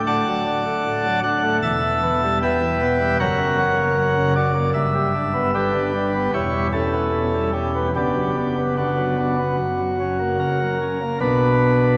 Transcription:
0.00 1.58 D1 medium
0.00 1.58 D2 medium
0.07 0.24 A2 medium
0.07 1.20 D5 medium
0.07 1.20 F#5 medium
0.07 1.20 A5 loud
0.27 0.44 F#3 medium
0.46 0.63 D4 medium
0.65 0.83 A3 medium
0.86 1.03 A2 medium
1.05 1.22 F#3 soft
1.23 1.41 D4 medium
1.23 1.56 F#5 loud
1.43 1.59 A3 medium
1.62 3.15 E1 medium
1.62 3.15 E2 medium
1.62 2.38 E5 medium
1.62 2.38 A5 loud
1.83 2.00 E3 medium
2.03 2.20 B3 medium
2.23 2.40 G3 medium
2.42 2.59 B2 medium
2.42 3.18 B4 medium
2.42 3.18 E5 medium
2.42 3.17 G5 medium
2.61 2.78 E3 medium
2.81 2.98 B3 medium
3.00 3.16 G3 medium
3.20 4.72 F#1 medium
3.20 4.72 F#2 medium
3.20 4.33 A#4 medium
3.20 4.33 C#5 medium
3.20 4.33 F#5 loud
3.40 3.56 C#3 soft
3.58 3.75 F#4 medium
3.77 3.95 A#3 soft
3.97 4.15 F#3 soft
4.16 4.34 C#3 medium
4.36 4.53 F#4 medium
4.36 4.69 D5 loud
4.55 4.72 A#3 soft
4.74 6.28 G1 medium
4.74 6.28 G2 medium
4.74 5.51 E5 medium
4.95 5.12 G3 soft
5.15 5.32 D4 soft
5.34 5.51 B3 medium
5.55 5.72 D3 soft
5.55 5.92 D4 medium
5.55 6.31 G4 medium
5.55 6.31 B4 loud
5.74 5.92 G3 medium
5.94 6.11 D4 medium
6.14 6.30 B3 soft
6.33 7.90 E1 medium
6.33 7.90 E2 medium
6.33 6.67 E4 medium
6.33 6.67 G4 medium
6.33 6.67 C#5 medium
6.53 6.70 G3 soft
6.73 7.51 C#4 medium
6.73 7.51 E4 medium
6.73 7.51 A4 medium
6.93 7.10 B3 soft
7.12 7.30 B2 soft
7.34 7.51 G3 soft
7.53 7.71 C#4 soft
7.53 7.88 G4 medium
7.75 7.91 B3 soft
7.96 9.55 F#1 medium
7.96 9.55 F#2 medium
7.96 8.56 B3 medium
7.96 8.35 D4 medium
7.96 8.74 G4 medium
8.16 8.34 F#3 soft
8.37 8.54 D4 soft
8.58 8.75 B3 soft
8.77 8.95 D3 soft
8.77 9.37 B3 soft
8.77 9.16 D4 soft
8.77 10.77 F#4 medium
8.98 9.15 F#3 soft
9.18 9.36 D4 soft
9.39 9.56 B3 soft
9.59 10.38 F#1 medium
9.59 10.38 F#2 medium
9.79 9.97 F#3 soft
10.00 10.18 C#4 soft
10.20 10.37 A#3 soft
10.39 10.58 C#3 soft
10.39 11.18 A#4 medium
10.61 10.79 F#3 soft
10.81 10.99 C#4 soft
11.01 11.18 A#3 soft
11.21 11.97 B1 medium
11.21 11.97 B2 medium
11.21 11.97 B3 soft
11.21 11.97 D4 soft
11.21 11.97 B4 medium

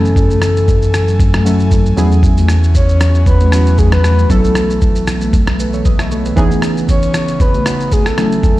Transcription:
0.00 1.93 F#2 medium
0.00 1.93 E3 medium
0.00 0.73 F#3 medium
0.00 1.95 F#3 medium
0.00 0.73 A3 medium
0.00 0.74 C#4 medium
0.00 0.74 E4 medium
0.00 0.16 A4 loud
0.00 1.95 A4 medium
0.00 0.74 G#5 medium
0.00 4.26 G#5 medium
0.05 shaker medium
0.16 1.16 A4 medium
0.16 kick loud
0.16 shaker medium
0.30 high conga medium
0.30 shaker medium
0.42 cross-stick medium
0.42 shaker loud
0.57 shaker medium
0.68 kick loud
0.68 shaker medium
0.82 shaker medium
0.94 cross-stick loud
0.94 low conga medium
0.94 shaker medium
1.08 shaker medium
1.20 kick loud
1.20 low conga medium
1.20 shaker medium
1.34 cross-stick loud
1.34 high conga medium
1.34 shaker soft
1.45 1.88 F#3 medium
1.45 1.88 A3 medium
1.45 1.88 C#4 medium
1.45 1.88 E4 medium
1.45 1.89 A4 medium
1.45 shaker loud
1.60 shaker medium
1.71 kick medium
1.71 high conga medium
1.71 low conga medium
1.71 shaker medium
1.86 shaker soft
1.97 4.26 E2 medium
1.97 4.28 E3 medium
1.97 2.80 F#3 medium
1.97 2.80 B3 medium
1.97 4.28 C#4 medium
1.97 2.81 C#4 medium
1.97 2.81 E4 medium
1.97 4.27 F#4 medium
1.97 2.81 G#4 loud
1.97 high conga medium
1.97 low conga medium
1.97 shaker medium
2.12 shaker medium
2.23 kick loud
2.23 shaker medium
2.37 high conga medium
2.37 shaker medium
2.48 cross-stick medium
2.48 shaker loud
2.63 shaker medium
2.75 3.23 C#5 loud
2.75 kick medium
2.75 shaker medium
2.89 shaker medium
3.00 cross-stick medium
3.00 low conga medium
3.00 shaker medium
3.14 shaker medium
3.26 3.80 B4 loud
3.26 kick loud
3.26 low conga medium
3.26 shaker medium
3.40 high conga medium
3.40 shaker soft
3.52 4.15 F#3 medium
3.52 4.15 B3 medium
3.52 4.16 C#4 medium
3.52 4.16 E4 medium
3.52 4.16 F#4 medium
3.52 cross-stick loud
3.52 shaker loud
3.66 shaker medium
3.78 3.92 G#4 medium
3.78 kick medium
3.78 high conga medium
3.78 low conga medium
3.78 shaker medium
3.92 4.32 B4 loud
3.92 cross-stick medium
3.92 shaker soft
4.04 cross-stick loud
4.04 high conga medium
4.04 low conga medium
4.04 shaker medium
4.18 shaker medium
4.29 6.33 B1 medium
4.29 8.60 E3 medium
4.29 5.13 F#3 medium
4.29 5.13 A3 medium
4.29 6.35 A3 medium
4.29 6.35 B3 medium
4.29 5.13 B3 medium
4.29 5.14 E4 medium
4.29 5.33 A4 medium
4.29 5.14 A4 loud
4.29 kick loud
4.29 shaker medium
4.44 high conga medium
4.44 shaker medium
4.55 cross-stick medium
4.55 shaker loud
4.70 shaker medium
4.81 kick loud
4.81 shaker medium
4.95 shaker medium
5.07 cross-stick loud
5.07 low conga medium
5.07 shaker medium
5.21 high conga medium
5.21 shaker medium
5.33 kick loud
5.33 low conga medium
5.33 shaker medium
5.47 cross-stick loud
5.47 high conga medium
5.47 shaker soft
5.59 5.73 G#4 soft
5.59 5.73 B4 medium
5.59 shaker loud
5.73 5.85 A4 medium
5.73 5.85 C#5 medium
5.73 shaker medium
5.85 5.99 B4 medium
5.85 5.99 D#5 medium
5.85 kick medium
5.85 high conga medium
5.85 shaker medium
5.99 6.10 C#5 medium
5.99 6.11 E5 medium
5.99 cross-stick medium
5.99 shaker soft
6.11 6.25 A4 medium
6.11 6.25 C#5 medium
6.11 high conga medium
6.11 low conga medium
6.11 shaker medium
6.25 6.37 G#4 soft
6.25 6.50 B4 medium
6.25 shaker medium
6.36 8.16 C#3 medium
6.36 7.20 E3 loud
6.36 7.20 B3 loud
6.36 8.16 B3 medium
6.36 7.20 C#4 loud
6.36 8.16 D#4 medium
6.36 7.20 D#4 loud
6.36 7.21 G#4 loud
6.36 kick loud
6.36 shaker medium
6.51 high conga medium
6.51 shaker medium
6.62 cross-stick medium
6.62 shaker loud
6.77 shaker medium
6.88 7.43 C#5 loud
6.88 kick medium
6.88 shaker medium
7.02 shaker medium
7.14 cross-stick loud
7.14 low conga medium
7.14 shaker medium
7.28 shaker medium
7.40 7.94 B4 loud
7.40 kick loud
7.40 low conga medium
7.40 shaker medium
7.54 high conga medium
7.54 shaker soft
7.65 8.17 E3 medium
7.65 8.18 B3 medium
7.65 8.17 C#4 medium
7.65 8.18 D#4 medium
7.65 8.18 F#4 medium
7.65 cross-stick loud
7.65 shaker loud
7.80 shaker medium
7.91 8.08 G#4 loud
7.91 kick medium
7.91 high conga medium
7.91 low conga medium
7.91 shaker medium
8.06 8.44 A4 loud
8.06 cross-stick medium
8.06 shaker medium
8.17 8.60 F#3 medium
8.17 8.60 A3 medium
8.17 8.60 C#4 medium
8.17 8.60 E4 medium
8.17 8.60 A4 medium
8.17 8.60 G#5 medium
8.17 cross-stick loud
8.17 high conga medium
8.17 low conga medium
8.17 shaker medium
8.32 shaker medium
8.43 8.60 A4 loud
8.43 kick loud
8.43 shaker medium

